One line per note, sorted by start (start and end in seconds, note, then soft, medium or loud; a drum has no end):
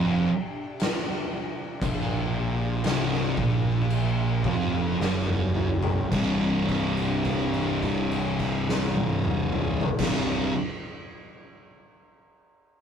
0.00 0.27 F1 loud
0.00 0.29 F2 loud
0.00 6.09 C3 medium
0.00 6.08 D4 medium
0.00 6.09 G4 medium
0.80 snare loud
0.80 crash medium
1.82 2.81 A#1 loud
1.82 2.84 A#2 loud
1.82 kick loud
1.82 crash medium
2.84 3.34 C1 loud
2.84 3.36 C2 loud
2.84 snare loud
2.84 crash medium
3.12 snare soft
3.37 4.41 A#1 medium
3.37 4.43 A#2 loud
3.37 kick loud
3.90 crash medium
4.44 4.95 F1 loud
4.44 4.99 F2 loud
4.44 kick loud
4.99 6.08 F#1 medium
4.99 6.11 F#2 loud
4.99 snare medium
5.27 mid tom medium
5.55 mid tom loud
5.83 floor tom loud
6.10 9.82 C1 medium
6.10 9.85 C2 medium
6.10 9.81 C3 medium
6.10 9.81 G3 medium
6.10 9.81 D4 medium
6.10 kick loud
6.10 crash loud
6.14 9.87 G2 medium
6.14 9.88 C3 medium
6.69 kick medium
6.69 crash soft
6.97 crash soft
7.25 kick medium
7.25 crash medium
7.54 crash soft
7.83 kick medium
7.83 crash soft
8.11 crash medium
8.39 kick medium
8.39 crash medium
8.69 snare loud
8.96 high tom loud
9.24 mid tom loud
9.52 mid tom loud
9.81 floor tom loud
9.98 10.47 C1 loud
9.98 10.50 C2 medium
9.98 10.52 G2 medium
9.98 10.46 C3 medium
9.98 10.46 G3 medium
9.98 10.47 D4 medium
9.98 kick loud
9.98 snare loud
9.98 crash loud
10.03 10.53 C3 loud